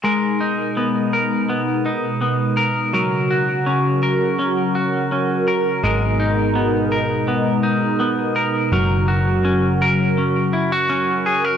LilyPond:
<<
  \new Staff \with { instrumentName = "Clean electric guitar" } { \time 4/4 \key gis \minor \tempo 4 = 83 <gis ais'>8 dis'8 b8 ais'8 b8 dis'8 b8 ais'8 | <fis ais'>8 fis'8 cis'8 ais'8 cis'8 fis'8 cis'8 ais'8 | <gis ais'>8 dis'8 b8 ais'8 b8 dis'8 b8 ais'8 | <fis ais'>8 fis'8 cis'8 ais'8 cis'8 e'16 fis'16 cis'8 gis'16 ais'16 | }
  \new Staff \with { instrumentName = "Analog synth pad" } { \clef bass \time 4/4 \key gis \minor << { ais'1~ | ais'1~ | ais'1~ | ais'1 | } \\ { <b, gis dis'>1 | <cis fis fis'>1 | <b, gis dis'>1 | <cis fis fis'>1 | } >> }
  \new Staff \with { instrumentName = "Picked electric bass" } { \clef bass \time 4/4 \key gis \minor r1 | r1 | gis,,1 | fis,,1 | }
>>